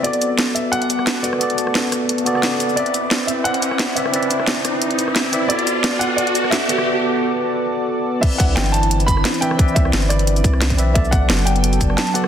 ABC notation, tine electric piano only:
X:1
M:4/4
L:1/16
Q:1/4=176
K:Clyd
V:1 name="Tine electric piano"
[B,FAd]12- [B,FAd]2 [B,FAd]2 | [B,FAd]8- [B,FAd]2 [B,FAd] [B,FAd]4- [B,FAd] | [CBde]12- [CBde]2 [CBde]2 | [CBde]12- [CBde]2 [CBde]2 |
[B,FAd]12- [B,FAd]2 [B,FAd]2 | z16 | [CBde]12- [CBde]2 [CBde]2 | [CBde]12- [CBde]2 [CBde]2 |
[F,B,Ad]12- [F,B,Ad]2 [B,FAd]2 |]